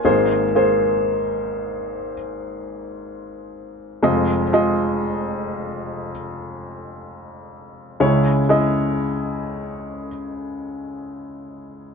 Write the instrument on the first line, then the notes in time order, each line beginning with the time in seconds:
felt piano
0.05 G#1 G#2 A#3 G#4 C5
0.55 A#3 G#4 C5
4.03 F1 F2 G#3 F4 D#5
4.53 G#3 F4 D#5
8.00 C#2 C#3 G#3 E4 C#5
8.49 G#3 E4 D#5